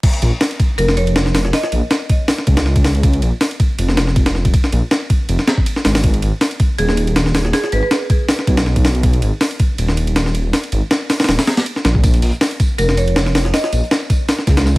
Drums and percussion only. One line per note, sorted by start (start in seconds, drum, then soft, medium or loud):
0.03 kick loud
0.03 crash medium
0.03 ride medium
0.13 ride soft
0.22 ride medium
0.41 snare loud
0.41 open hi-hat medium
0.51 ride soft
0.60 kick loud
0.60 ride medium
0.78 ride medium
0.88 snare medium
0.97 ride medium
1.07 ride soft
1.16 snare loud
1.16 ride medium
1.26 snare medium
1.35 snare loud
1.35 open hi-hat medium
1.45 snare soft
1.53 snare loud
1.53 open hi-hat medium
1.63 snare medium
1.72 ride medium
1.91 snare loud
1.91 ride medium
2.10 kick medium
2.10 ride medium
2.28 snare loud
2.28 open hi-hat medium
2.38 snare soft
2.47 kick medium
2.47 ride medium
2.57 snare loud
2.57 ride medium
2.66 snare soft
2.76 kick medium
2.76 ride medium
2.84 snare loud
2.84 open hi-hat medium
2.95 ride soft
3.03 kick loud
3.03 ride medium
3.13 ride soft
3.22 ride medium
3.41 snare loud
3.41 open hi-hat medium
3.51 ride soft
3.60 kick loud
3.60 ride medium
3.79 ride medium
3.89 snare medium
3.97 snare loud
3.97 ride medium
4.07 snare soft
4.16 kick medium
4.16 ride medium
4.26 snare loud
4.26 ride medium
4.35 snare soft
4.45 kick medium
4.45 ride medium
4.54 kick loud
4.54 ride medium
4.64 snare medium
4.72 ride medium
4.91 snare loud
4.91 ride medium
5.10 kick loud
5.10 ride medium
5.29 ride medium
5.39 snare soft
5.48 snare loud
5.48 ride medium
5.58 kick loud
5.66 ride medium
5.76 snare medium
5.85 snare loud
5.85 open hi-hat medium
5.95 snare loud
5.95 open hi-hat medium
6.04 kick loud
6.04 ride medium
6.14 ride soft
6.22 ride medium
6.41 snare loud
6.41 open hi-hat medium
6.51 ride soft
6.60 kick loud
6.60 ride medium
6.78 ride medium
6.89 snare medium
6.97 ride medium
7.07 ride soft
7.16 snare loud
7.16 ride medium
7.26 snare medium
7.35 snare loud
7.35 open hi-hat medium
7.45 snare soft
7.53 snare loud
7.53 open hi-hat medium
7.64 snare medium
7.72 ride medium
7.91 snare loud
7.91 ride medium
8.10 kick loud
8.10 ride medium
8.28 snare loud
8.28 open hi-hat medium
8.39 snare soft
8.47 kick medium
8.47 ride medium
8.57 snare loud
8.57 ride medium
8.66 snare soft
8.76 kick medium
8.76 ride medium
8.85 snare loud
8.85 open hi-hat medium
8.95 ride soft
9.03 kick loud
9.03 ride medium
9.13 ride soft
9.22 ride medium
9.41 snare loud
9.41 open hi-hat medium
9.51 ride soft
9.60 kick loud
9.60 ride medium
9.78 ride medium
9.88 snare medium
9.97 ride medium
10.07 ride soft
10.16 snare loud
10.16 ride medium
10.26 snare medium
10.35 ride medium
10.53 snare loud
10.53 open hi-hat medium
10.64 ride soft
10.72 ride medium
10.91 snare loud
10.91 ride medium
11.10 snare loud
11.10 open hi-hat medium
11.20 snare medium
11.20 open hi-hat medium
11.24 snare medium
11.24 open hi-hat medium
11.29 snare loud
11.29 open hi-hat medium
11.39 snare loud
11.39 open hi-hat medium
11.47 snare loud
11.47 open hi-hat medium
11.57 snare loud
11.57 open hi-hat medium
11.66 ride medium
11.76 snare medium
11.85 snare loud
11.85 ride medium
11.95 kick medium
12.04 kick loud
12.04 ride medium
12.04 tambourine medium
12.14 closed hi-hat soft
12.14 ride soft
12.22 open hi-hat medium
12.22 ride medium
12.32 closed hi-hat soft
12.41 snare loud
12.41 open hi-hat medium
12.41 tambourine medium
12.51 ride soft
12.60 kick medium
12.60 ride medium
12.60 tambourine medium
12.79 ride medium
12.79 tambourine medium
12.89 snare medium
12.97 ride medium
12.97 tambourine medium
13.08 ride soft
13.16 snare loud
13.16 ride medium
13.16 tambourine medium
13.26 snare medium
13.35 snare loud
13.35 open hi-hat medium
13.35 tambourine medium
13.45 snare soft
13.54 snare loud
13.54 open hi-hat medium
13.54 tambourine medium
13.64 snare medium
13.73 ride medium
13.73 tambourine medium
13.83 closed hi-hat soft
13.91 snare loud
13.91 ride medium
13.91 tambourine loud
14.10 kick loud
14.10 ride medium
14.10 tambourine medium
14.28 snare loud
14.28 open hi-hat medium
14.28 tambourine medium
14.39 snare soft
14.47 kick medium
14.47 snare loud
14.47 ride medium
14.47 tambourine medium
14.57 snare loud
14.57 snare soft
14.57 ride medium
14.66 snare soft
14.66 tambourine loud